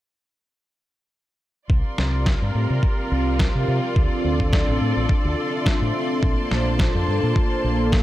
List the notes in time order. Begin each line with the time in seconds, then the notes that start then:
1.69 C2 C4 F4 G4 A#4 D5 C6, kick
1.98 C2, snare
2.26 kick, snare
2.42 G2
2.55 A2
2.70 C3
2.83 kick
3.10 C2 C4 F4 G4 A#4 F5
3.39 kick, snare
3.55 C3
3.68 C3
3.95 D2 C4 D4 F4 A4 D5, kick
4.24 D2
4.40 kick
4.53 kick, snare
4.68 A1
4.81 A2
4.97 A1
5.09 kick
5.25 D2
5.37 C4 D4 F4 A4 E5
5.66 kick, snare
5.81 A2
6.22 A#1 A#3 D4 F4 A4 C5 A5, kick
6.51 A#1, snare
6.79 kick, snare
6.95 F2
7.08 G2
7.23 A#2
7.36 kick
7.63 A#1 A#3 D4 F4 A4 F5
7.92 kick, snare